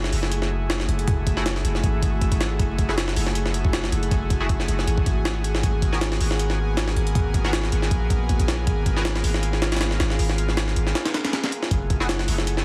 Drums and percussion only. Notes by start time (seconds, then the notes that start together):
0.04 snare
0.13 open hi-hat
0.23 snare
0.32 closed hi-hat
0.42 snare
0.70 snare, closed hi-hat
0.80 snare
0.89 closed hi-hat
0.99 closed hi-hat
1.08 kick, closed hi-hat
1.27 kick, closed hi-hat
1.37 snare
1.46 snare, closed hi-hat
1.56 snare
1.65 closed hi-hat
1.75 snare
1.84 kick, closed hi-hat
2.03 kick, closed hi-hat
2.21 kick, closed hi-hat
2.32 kick, closed hi-hat
2.41 snare, closed hi-hat
2.59 kick, closed hi-hat
2.78 kick, closed hi-hat
2.89 snare
2.98 snare, closed hi-hat
3.08 snare
3.16 open hi-hat
3.26 snare
3.35 closed hi-hat
3.46 snare
3.54 closed hi-hat
3.65 kick
3.73 snare, closed hi-hat
3.84 snare
3.92 closed hi-hat
4.03 closed hi-hat
4.11 kick, closed hi-hat
4.30 kick, closed hi-hat
4.49 kick, closed hi-hat
4.60 snare
4.68 closed hi-hat
4.79 snare
4.87 closed hi-hat
4.98 kick
5.06 kick, closed hi-hat
5.25 snare, closed hi-hat
5.44 closed hi-hat
5.55 snare
5.63 kick, closed hi-hat
5.82 kick, closed hi-hat
5.93 snare
6.01 snare, closed hi-hat
6.12 snare
6.21 open hi-hat
6.31 snare
6.39 closed hi-hat
6.50 snare
6.77 snare, closed hi-hat
6.88 snare
6.96 closed hi-hat
7.07 closed hi-hat
7.15 kick, closed hi-hat
7.34 kick, closed hi-hat
7.45 snare
7.53 snare, closed hi-hat
7.64 snare
7.72 closed hi-hat
7.82 snare
7.91 kick, closed hi-hat
8.10 kick, closed hi-hat
8.29 kick, closed hi-hat
8.39 kick, closed hi-hat
8.48 snare, closed hi-hat
8.67 kick, closed hi-hat
8.86 kick, closed hi-hat
8.97 snare
9.05 snare, closed hi-hat
9.16 snare
9.24 open hi-hat
9.34 snare
9.43 closed hi-hat
9.53 snare
9.62 snare, closed hi-hat
9.72 snare, closed hi-hat
9.76 snare, closed hi-hat
9.81 snare, closed hi-hat
9.91 snare
10.00 snare, closed hi-hat
10.10 snare
10.19 open hi-hat
10.29 snare
10.38 closed hi-hat
10.48 snare
10.57 snare, closed hi-hat
10.68 snare
10.76 closed hi-hat
10.87 snare
10.95 snare, closed hi-hat
11.05 snare, closed hi-hat
11.14 snare, closed hi-hat
11.25 snare, closed hi-hat
11.33 snare, closed hi-hat
11.44 snare, closed hi-hat
11.52 closed hi-hat
11.63 snare
11.71 kick, closed hi-hat
11.90 kick, closed hi-hat
12.01 snare
12.09 snare, closed hi-hat
12.19 snare
12.28 open hi-hat
12.38 snare
12.47 closed hi-hat
12.57 snare